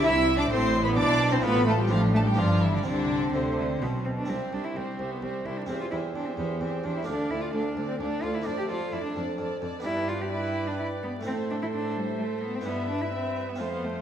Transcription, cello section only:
X:1
M:3/4
L:1/8
Q:1/4=129
K:C
V:1 name="Cello section" clef=bass
C,2 A,,2 B,,2 | A,,2 A,,2 G,,2 | C,2 D,2 B,,2 | C,, C,, C,, C,, C,, C,, |
E,, E,, E,, E,, E,, E,, | D,, D,, D,, D,, D,, D,, | F,, F,, F,, F,, F,, F,, | G,,6 |
A,,6 | G,,4 F,,2 |]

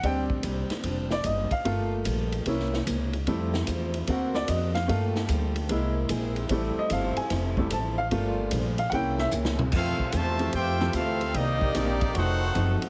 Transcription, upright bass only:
X:1
M:4/4
L:1/8
Q:"Swing" 1/4=149
K:F
V:1 name="Upright bass" clef=bass
D,,2 C,, z F,,,2 _G,,, z | G,,,2 B,,,2 C,,2 _D,,2 | F,,2 E,,2 D,,2 ^E,,2 | G,,2 D,,2 C,,2 B,,,2 |
A,,, z G,,, z F,,,2 A,,,2 | G,,,2 B,,,2 C,,2 _D,,2 | F,, z E,,2 F,,2 D,,2 | C,,2 B,,,2 F,,,2 _G,,, z |]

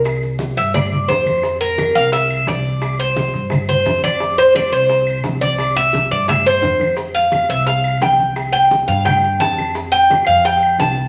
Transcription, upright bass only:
X:1
M:4/4
L:1/8
Q:1/4=173
K:F
V:1 name="Upright bass" clef=bass
C,,3 G,,3 F,,2- | F,,3 C,,3 C,,2- | C,,3 G,,3 F,,2- | F,,3 C,,3 C,,2- |
C,,3 G,,3 F,,2- | F,,3 C,,3 C,,2- | C,,3 G,,3 F,,2- | F,,3 F,,3 C,,2 |]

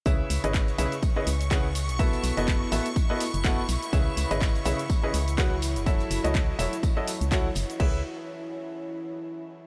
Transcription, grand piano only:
X:1
M:4/4
L:1/16
Q:"Swing 16ths" 1/4=124
K:C#m
V:1 name="Grand piano"
[C,EGBce]3 [C,EGBcd]3 [C,EGBce] z2 [C,EGBcd] z2 [C,EGBcf] z3 | [B,EFABe]3 [B,EFABd]3 [B,EFABe] z2 [B,EFABd] z2 [B,EFABf] z3 | [C,EGBce]3 [C,EGBcd]3 [C,EGBce] z2 [C,EGBcd] z2 [F,EGBcf] z3 | [F,EFAce]3 [F,EFAcd]3 [F,EFAce] z2 [F,EFAcd] z2 [F,EFAcf] z3 |
[EGBce]2 z12 z2 |]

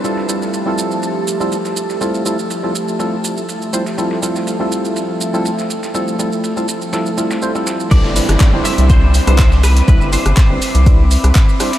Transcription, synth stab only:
X:1
M:4/4
L:1/16
Q:"Swing 16ths" 1/4=122
K:C
V:1 name="Synth stab"
[G,CEFA]2 [G,CEFA]3 [G,CEFA]6 [G,CEFA] z4 | [G,CEFA]2 [G,CEFA] z2 [G,CEFA] z2 [G,CEFA] z4 z [G,CEFc] z | [G,CEFA]2 [G,CEFA]3 [G,CEFA]6 [G,CEFA] z4 | [G,CEFA]2 [G,CEFA] z2 [G,CEFA] z2 [G,CEFA] z [G,CEFA]2 [G,CEFc] [G,CEFA]3 |
[G,CDEB]2 [G,CDEB]3 [G,CDEc]6 [G,CDEB] z4 | [G,CDEB]2 [G,CDEB] z2 [G,CDEB] z2 [G,CDEB] z4 z [G,CDEc] z |]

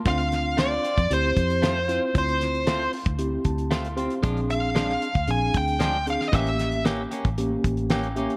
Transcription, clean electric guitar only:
X:1
M:4/4
L:1/8
Q:1/4=114
K:Dm
V:1 name="Clean electric guitar"
[A,CF] z [A,CF] [CF] z2 [A,CF] [CF] | z2 [A,CF] z3 [A,CF] [CF] | [F,_A,DF] z [F,A,DF] z3 [F,A,DF] z | [E,B,^CG] z [E,B,CG] [B,CG] z2 [E,B,CG] [B,CG] |]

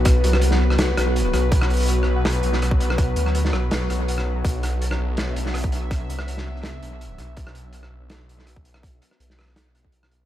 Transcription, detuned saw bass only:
X:1
M:4/4
L:1/8
Q:1/4=164
K:Bphr
V:1 name="Detuned saw bass" clef=bass
B,,, C,,4 B,,,2 B,,, | B,,,3 B,,,2 B,,,3- | B,,, D,,2 B,,,2 B,,,3 | B,,,3 B,,,2 B,,,3- |
B,,, C,,4 B,,,2 B,,, | B,,,3 B,,,2 B,,,3- | B,,, z B,,,6 |]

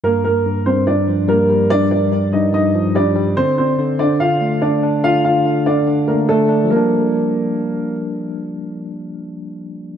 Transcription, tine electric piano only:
X:1
M:4/4
L:1/8
Q:1/4=144
K:Gm
V:1 name="Tine electric piano" clef=bass
G,,2 G,, G,, G,, F, G, G, | G,,2 G,, G,, G,, F, G, G, | D,2 D, D, D, A, D D | D,2 D, D, D, A, D D |
[F,G,B,D]8- | [F,G,B,D]8 |]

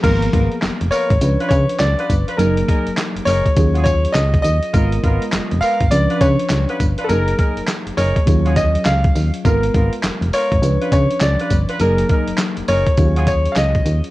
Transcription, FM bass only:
X:1
M:4/4
L:1/16
Q:"Swing 16ths" 1/4=102
K:G#dor
V:1 name="FM bass" clef=bass
G,,,2 G,,, z E,,, E,,, z G,,, C,, z C, z C,, z =G,,, z | F,,,2 z F,,, z F,,, F,,, z D,,4 C,,2 D,, z | G,,,2 G,,, z E,,, E,,, z G,,, C,, z C, z C,, z =G,,, z | F,,,2 z F,,, z F,,, F,,, z D,,4 C,,2 D,, z |
G,,,2 G,,, z E,,, E,,, z G,,, C,, z C, z C,, z =G,,, z | F,,,2 z F,,, z F,,, F,,, z D,,4 C,,2 D,, z |]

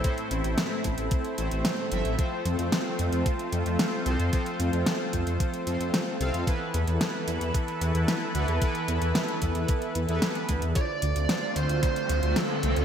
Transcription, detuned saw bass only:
X:1
M:4/4
L:1/16
Q:1/4=112
K:Ephr
V:1 name="Detuned saw bass" clef=bass
z2 A,,, A,,, z2 A,,, A,,, z2 A,,, A,,, z2 G,,, A,,, | z2 F,, F,, z2 F,, F,, z2 F,, F,, z2 C,, F,, | z2 F,, F,, z2 F,, F,, z2 F,, F,, z2 C,, F,, | z2 E,, E,, z2 E,, E,, z2 E,, E,, z2 D,, E,, |
z2 E,, E,, z2 E,, E,, z2 E,, E,, z2 D,, E,, | z2 D,, D,, z2 D,, D,, z2 D,, D,, z2 C,, D,, |]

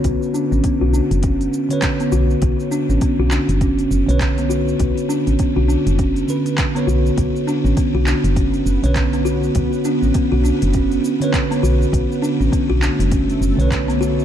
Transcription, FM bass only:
X:1
M:4/4
L:1/16
Q:"Swing 16ths" 1/4=101
K:Bm
V:1 name="FM bass" clef=bass
B,,, z2 A,,, z B,,, z F,,,3 z4 B,,, z | B,,, z2 A,,, z B,,, z F,,,3 F,,, B,,,4- B,,, | B,,, z2 A,,, z B,,, z F,,,3 z4 B,,, z | B,,, z2 A,,, z B,,, z F,,,3 F,,, B,,,4- B,,, |
B,,, z2 A,,, z B,,, z F,,,3 z4 B,,, z | B,,, z2 A,,, z B,,, z F,,,3 F,,, B,,,4- B,,, |]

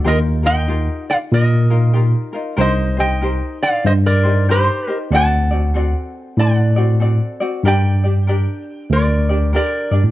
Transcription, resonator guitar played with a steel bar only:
X:1
M:4/4
L:1/16
Q:"Swing" 1/4=95
K:Gm
V:1 name="Resonator guitar played with a steel bar"
[Be]2 [eg]4 [df]2 [Be]6 z2 | [ce]2 [eg]4 [df]2 [ce] [Bd]3 [Gc]3 z | [^fa]8 [df]8 | [dg]8 [Bd]4 [Bd]3 z |]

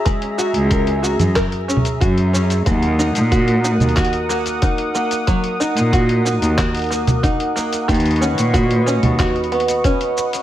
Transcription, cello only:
X:1
M:4/4
L:1/16
Q:1/4=92
K:D#phr
V:1 name="Cello" clef=bass
z3 C,,3 z F,, z4 F,,3 z | D,,2 z A,,3 z D,, z8 | z3 A,,3 z D,, z8 | D,,2 z A,,3 z D,, z8 |]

